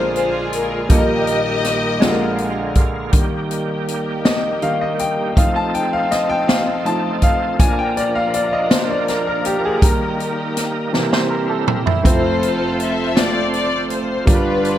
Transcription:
Already playing: grand piano A#1 A#2 G#3 D4 F4 A#4, tonewheel organ D3 G#3 A#3 F4, string section F4 G#4 C5
0.16 string section C5, closed hi-hat
0.53 string section A#4, closed hi-hat
0.89 grand piano A#1 A#2 G3 A#3 D#4 A4, tonewheel organ A#2 D#3 G3 G4, string section G4 A#4 D#5, kick, closed hi-hat
0.98 grand piano A#4
1.27 closed hi-hat
1.64 snare, closed hi-hat
2.00 grand piano A#1 A#2 D3 G#3 F4 A4, tonewheel organ D3 G#3 A#3 F4, snare, closed hi-hat
2.09 grand piano A#4
2.38 closed hi-hat
2.75 kick, closed hi-hat
3.11 tonewheel organ D#3 G3 A#3 G4, grand piano D#3 G3 A#3, string section A#3 D#4 G4 A#4, kick, closed hi-hat
3.51 closed hi-hat
3.88 closed hi-hat
4.25 grand piano D#5, snare, closed hi-hat
4.62 grand piano D#3 G3 A#3 F5, closed hi-hat
4.81 grand piano D#5
4.99 grand piano G5, closed hi-hat
5.35 tonewheel organ F3 C4 D#4 A4, grand piano F3 A3 D#4 F5, string section C4 F4 A4, kick, closed hi-hat
5.56 grand piano A5
5.74 grand piano G5, closed hi-hat
5.93 grand piano F5
6.11 grand piano D#5, snare, closed hi-hat
6.29 grand piano G5
6.48 grand piano F5, snare, closed hi-hat
6.85 grand piano F3 A3 D#4 A5, closed hi-hat
7.22 grand piano F5, kick, closed hi-hat
7.59 grand piano A#2 F3 D4 G#5, tonewheel organ A#3 D4 A#4, string section A#3 D4 F4 A#4, kick, closed hi-hat
7.79 grand piano G5
7.97 grand piano D5, closed hi-hat
8.15 grand piano F5
8.34 grand piano D5, closed hi-hat
8.47 grand piano F5
8.53 grand piano D#5
8.71 grand piano C5, snare, closed hi-hat
8.90 grand piano D5
9.08 grand piano A#4, snare, closed hi-hat
9.27 grand piano A#4
9.45 grand piano G4, closed hi-hat
9.65 grand piano G#4
9.81 grand piano D#3 G3 A#3 A#4, tonewheel organ G3 D#4, string section D#4 G4, kick, closed hi-hat
10.20 closed hi-hat
10.57 snare, closed hi-hat
10.92 grand piano C3 E3 A#3, string section C4 E4 G4, tonewheel organ C4 E4, snare
11.13 clean electric guitar C5, snare
11.31 clean electric guitar A#4
11.50 clean electric guitar A4
11.67 clean electric guitar G4, mid tom
11.86 clean electric guitar E4, floor tom
12.03 grand piano F1 F2 A3 C4 F4 C5, tonewheel organ A3 C4 F4 C5, string section C4 F4 A4 C5, kick, closed hi-hat
12.43 closed hi-hat
12.80 string section E5, closed hi-hat
13.15 grand piano A3 C4 F4 C5, string section D5, snare, closed hi-hat
13.54 string section D5, closed hi-hat
13.90 string section C5, closed hi-hat
14.26 grand piano G1 G2 G3 D4 F4 A#4, tonewheel organ G3 D4 B4, string section D4 G4 B4, kick, closed hi-hat
14.30 string section F4 B4
14.35 grand piano B4
14.65 closed hi-hat

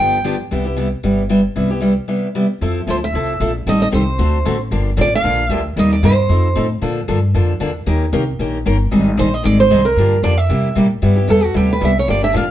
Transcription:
Already playing: steel-string acoustic guitar G5
0.00 upright bass G1, steel-string acoustic guitar D3 F3 B3 D4 G4
0.24 steel-string acoustic guitar D3 F3 B3 D4 G4
0.51 upright bass C2, steel-string acoustic guitar C3 G3 B3 E4 G4
0.65 steel-string acoustic guitar B3 E4 G4
0.76 steel-string acoustic guitar C3 G3 B3 E4 G4
1.03 upright bass G1, steel-string acoustic guitar C3 G3 B3 E4 G4
1.29 steel-string acoustic guitar C3 G3 B3 E4 G4
1.56 upright bass C2, steel-string acoustic guitar C3 G3 B3 E4 G4
1.70 steel-string acoustic guitar B3 E4 G4
1.81 steel-string acoustic guitar C3 G3 B3 E4 G4
2.08 steel-string acoustic guitar C3 G3 B3 E4 G4
2.35 steel-string acoustic guitar C3 G3 B3 E4 G4
2.61 upright bass F2, steel-string acoustic guitar F3 C4 E4 A4
2.87 upright bass D2, steel-string acoustic guitar F3 C4 E4 A4 C5
3.04 steel-string acoustic guitar E5
3.13 upright bass C2, steel-string acoustic guitar F3 C4 E4 A4
3.40 upright bass A#1, steel-string acoustic guitar F3 C4 E4 A4
3.66 upright bass A1, steel-string acoustic guitar D#3 G3 C4 G4 A4 D#5
3.82 steel-string acoustic guitar D#5
3.92 upright bass C2, steel-string acoustic guitar D#3 G3 C4 G4 A4 C5
4.18 upright bass D2, steel-string acoustic guitar D3 A3 C4 F#4 A4
4.45 upright bass A1, steel-string acoustic guitar D3 A3 C4 F#4 A4
4.71 upright bass G1, steel-string acoustic guitar D3 F3 A#3 D4 G4
4.97 upright bass A1, steel-string acoustic guitar D3 F3 A#3 D4 G4
5.01 steel-string acoustic guitar D5
5.15 steel-string acoustic guitar F5
5.24 upright bass A#1, steel-string acoustic guitar D3 F3 A#3 D4 G4
5.49 upright bass D2, steel-string acoustic guitar D3 F3 A#3 D4 G4 E5
5.76 upright bass D#2, steel-string acoustic guitar C3 G3 A#3 D#4 G4 D#5
5.93 steel-string acoustic guitar D5
6.03 upright bass G2, steel-string acoustic guitar C3 G3 A#3 D#4 G4 C5
6.29 upright bass F2, steel-string acoustic guitar F3 C4 D#4 A4
6.55 upright bass A2, steel-string acoustic guitar F3 C4 D#4 A4
6.81 upright bass A#2, steel-string acoustic guitar D3 F3 A#3 D4 A4
7.08 upright bass G2, steel-string acoustic guitar D3 F3 A#3 D4 A4
7.34 upright bass F2, steel-string acoustic guitar D3 F3 A#3 D4 A4
7.60 upright bass E2, steel-string acoustic guitar D3 F3 A#3 D4 A4
7.86 upright bass D#2, steel-string acoustic guitar D#3 A#3 C#4 G4 A#4
8.12 upright bass C2, steel-string acoustic guitar D#3 A#3 C#4 G4 A#4
8.39 upright bass A#1, steel-string acoustic guitar D#3 A#3 C#4 G4 A#4
8.66 upright bass G1, steel-string acoustic guitar D#3 A#3 C#4 G4 A#4
8.91 upright bass G#1, steel-string acoustic guitar D#3 G3 C4 D#4 G#4
9.17 upright bass A#1, steel-string acoustic guitar D#3 G3 C4 D#4 G#4 C5
9.34 steel-string acoustic guitar D#5
9.43 upright bass G#1, steel-string acoustic guitar D#3 G3 C4 D#4 G#4 D5
9.60 steel-string acoustic guitar C5
9.70 upright bass C2, steel-string acoustic guitar D#3 G3 C4 D#4 G#4
9.85 steel-string acoustic guitar A#4
9.96 upright bass G2, steel-string acoustic guitar D3 F3 A#3 D4 G4
10.23 upright bass F2, steel-string acoustic guitar D3 F3 A#3 D4 G4 D5
10.38 steel-string acoustic guitar E5
10.49 upright bass C3, steel-string acoustic guitar C3 G3 A#3 E4 G4
10.75 upright bass A#2, steel-string acoustic guitar C3 G3 A#3 E4 G4
11.02 upright bass G2, steel-string acoustic guitar C3 G3 B3 E4 G4
11.16 steel-string acoustic guitar B3 E4 G4
11.28 upright bass E2, steel-string acoustic guitar C3 G3 B3 E4 G4 A4
11.44 steel-string acoustic guitar F#4
11.54 upright bass D2, steel-string acoustic guitar C3 G3 B3 E4 G4
11.73 steel-string acoustic guitar B4
11.81 upright bass C2, steel-string acoustic guitar C3 G3 B3 E4 G4
11.85 steel-string acoustic guitar E5
11.99 steel-string acoustic guitar C#5
12.07 upright bass G1, steel-string acoustic guitar D3 F3 A#3 D4 G4 D5
12.21 steel-string acoustic guitar A#3 D4 G4 E5
12.33 upright bass A1, steel-string acoustic guitar D3 F3 A#3 D4 G4 F5

